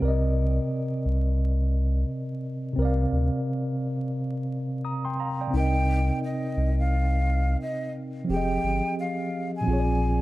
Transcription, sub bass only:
0, 0, Header, 1, 2, 480
1, 0, Start_track
1, 0, Key_signature, -3, "minor"
1, 0, Tempo, 689655
1, 9, Time_signature, 4, 2, 24, 8
1, 7110, End_track
2, 0, Start_track
2, 0, Title_t, "Sub bass"
2, 0, Program_c, 0, 38
2, 13, Note_on_c, 0, 36, 99
2, 413, Note_off_c, 0, 36, 0
2, 734, Note_on_c, 0, 36, 90
2, 1423, Note_off_c, 0, 36, 0
2, 1931, Note_on_c, 0, 36, 87
2, 2131, Note_off_c, 0, 36, 0
2, 2174, Note_on_c, 0, 38, 78
2, 2294, Note_off_c, 0, 38, 0
2, 3853, Note_on_c, 0, 36, 97
2, 4253, Note_off_c, 0, 36, 0
2, 4573, Note_on_c, 0, 36, 91
2, 5263, Note_off_c, 0, 36, 0
2, 5771, Note_on_c, 0, 29, 101
2, 5971, Note_off_c, 0, 29, 0
2, 6010, Note_on_c, 0, 31, 85
2, 6132, Note_off_c, 0, 31, 0
2, 6732, Note_on_c, 0, 34, 104
2, 7110, Note_off_c, 0, 34, 0
2, 7110, End_track
0, 0, End_of_file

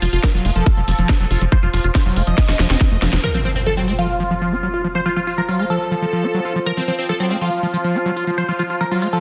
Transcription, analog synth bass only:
0, 0, Header, 1, 2, 480
1, 0, Start_track
1, 0, Key_signature, -1, "major"
1, 0, Tempo, 428571
1, 1704, Time_signature, 4, 2, 24, 8
1, 10305, End_track
2, 0, Start_track
2, 0, Title_t, "Analog synth bass"
2, 0, Program_c, 0, 38
2, 24, Note_on_c, 0, 29, 99
2, 92, Note_off_c, 0, 29, 0
2, 144, Note_on_c, 0, 29, 93
2, 212, Note_off_c, 0, 29, 0
2, 384, Note_on_c, 0, 29, 87
2, 451, Note_off_c, 0, 29, 0
2, 503, Note_on_c, 0, 29, 102
2, 571, Note_off_c, 0, 29, 0
2, 624, Note_on_c, 0, 29, 88
2, 691, Note_off_c, 0, 29, 0
2, 864, Note_on_c, 0, 29, 89
2, 932, Note_off_c, 0, 29, 0
2, 983, Note_on_c, 0, 29, 100
2, 1051, Note_off_c, 0, 29, 0
2, 1103, Note_on_c, 0, 29, 90
2, 1171, Note_off_c, 0, 29, 0
2, 1344, Note_on_c, 0, 29, 86
2, 1412, Note_off_c, 0, 29, 0
2, 1464, Note_on_c, 0, 29, 99
2, 1531, Note_off_c, 0, 29, 0
2, 1583, Note_on_c, 0, 29, 94
2, 1651, Note_off_c, 0, 29, 0
2, 1823, Note_on_c, 0, 29, 91
2, 1891, Note_off_c, 0, 29, 0
2, 1944, Note_on_c, 0, 29, 101
2, 2011, Note_off_c, 0, 29, 0
2, 2064, Note_on_c, 0, 29, 94
2, 2131, Note_off_c, 0, 29, 0
2, 2304, Note_on_c, 0, 29, 88
2, 2371, Note_off_c, 0, 29, 0
2, 2423, Note_on_c, 0, 29, 100
2, 2491, Note_off_c, 0, 29, 0
2, 2544, Note_on_c, 0, 29, 89
2, 2611, Note_off_c, 0, 29, 0
2, 2784, Note_on_c, 0, 29, 89
2, 2851, Note_off_c, 0, 29, 0
2, 2903, Note_on_c, 0, 29, 101
2, 2971, Note_off_c, 0, 29, 0
2, 3023, Note_on_c, 0, 29, 94
2, 3091, Note_off_c, 0, 29, 0
2, 3264, Note_on_c, 0, 29, 87
2, 3331, Note_off_c, 0, 29, 0
2, 3383, Note_on_c, 0, 29, 96
2, 3451, Note_off_c, 0, 29, 0
2, 3504, Note_on_c, 0, 29, 96
2, 3571, Note_off_c, 0, 29, 0
2, 10305, End_track
0, 0, End_of_file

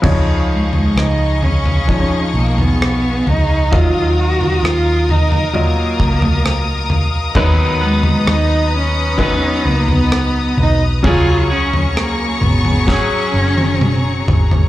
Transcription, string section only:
0, 0, Header, 1, 2, 480
1, 0, Start_track
1, 0, Tempo, 921659
1, 18, Time_signature, 4, 2, 24, 8
1, 1938, Tempo, 911854
1, 4818, Tempo, 925926
1, 7666, End_track
2, 0, Start_track
2, 0, Title_t, "String section"
2, 0, Program_c, 0, 48
2, 16, Note_on_c, 0, 68, 66
2, 17, Note_on_c, 0, 75, 62
2, 17, Note_on_c, 0, 85, 71
2, 18, Note_on_c, 0, 77, 58
2, 1918, Note_off_c, 0, 68, 0
2, 1919, Note_off_c, 0, 75, 0
2, 1919, Note_off_c, 0, 85, 0
2, 1930, Note_on_c, 0, 70, 72
2, 1931, Note_on_c, 0, 87, 75
2, 1936, Note_on_c, 0, 82, 63
2, 3830, Note_off_c, 0, 70, 0
2, 3832, Note_off_c, 0, 77, 0
2, 3851, Note_on_c, 0, 71, 74
2, 3854, Note_on_c, 0, 75, 66
2, 5752, Note_off_c, 0, 87, 0
2, 5756, Note_off_c, 0, 71, 0
2, 5758, Note_off_c, 0, 75, 0
2, 5772, Note_on_c, 0, 68, 74
2, 5772, Note_on_c, 0, 85, 89
2, 5775, Note_on_c, 0, 73, 73
2, 7666, Note_off_c, 0, 68, 0
2, 7666, Note_off_c, 0, 73, 0
2, 7666, Note_off_c, 0, 82, 0
2, 7666, Note_off_c, 0, 85, 0
2, 7666, End_track
0, 0, End_of_file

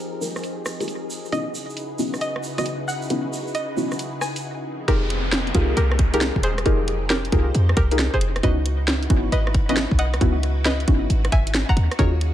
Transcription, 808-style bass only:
0, 0, Header, 1, 2, 480
1, 0, Start_track
1, 0, Tempo, 444444
1, 1429, Time_signature, 4, 2, 24, 8
1, 13323, End_track
2, 0, Start_track
2, 0, Title_t, "808-style bass"
2, 0, Program_c, 0, 38
2, 5271, Note_on_c, 0, 29, 95
2, 5962, Note_off_c, 0, 29, 0
2, 5991, Note_on_c, 0, 36, 91
2, 6195, Note_off_c, 0, 36, 0
2, 6230, Note_on_c, 0, 36, 81
2, 6814, Note_off_c, 0, 36, 0
2, 6869, Note_on_c, 0, 27, 99
2, 7108, Note_on_c, 0, 29, 82
2, 7124, Note_off_c, 0, 27, 0
2, 7171, Note_off_c, 0, 29, 0
2, 7190, Note_on_c, 0, 29, 95
2, 7882, Note_off_c, 0, 29, 0
2, 7910, Note_on_c, 0, 36, 90
2, 8115, Note_off_c, 0, 36, 0
2, 8151, Note_on_c, 0, 41, 99
2, 8355, Note_off_c, 0, 41, 0
2, 8389, Note_on_c, 0, 36, 102
2, 8734, Note_off_c, 0, 36, 0
2, 8788, Note_on_c, 0, 29, 88
2, 9081, Note_off_c, 0, 29, 0
2, 9108, Note_on_c, 0, 37, 94
2, 9801, Note_off_c, 0, 37, 0
2, 9828, Note_on_c, 0, 32, 94
2, 10034, Note_off_c, 0, 32, 0
2, 10068, Note_on_c, 0, 32, 82
2, 10653, Note_off_c, 0, 32, 0
2, 10707, Note_on_c, 0, 35, 99
2, 10947, Note_on_c, 0, 37, 83
2, 10963, Note_off_c, 0, 35, 0
2, 11011, Note_off_c, 0, 37, 0
2, 11028, Note_on_c, 0, 37, 95
2, 11721, Note_off_c, 0, 37, 0
2, 11748, Note_on_c, 0, 32, 93
2, 11954, Note_off_c, 0, 32, 0
2, 11988, Note_on_c, 0, 32, 97
2, 12194, Note_off_c, 0, 32, 0
2, 12229, Note_on_c, 0, 32, 102
2, 12573, Note_off_c, 0, 32, 0
2, 12627, Note_on_c, 0, 32, 83
2, 12691, Note_off_c, 0, 32, 0
2, 12707, Note_on_c, 0, 39, 94
2, 12833, Note_off_c, 0, 39, 0
2, 12949, Note_on_c, 0, 39, 91
2, 13323, Note_off_c, 0, 39, 0
2, 13323, End_track
0, 0, End_of_file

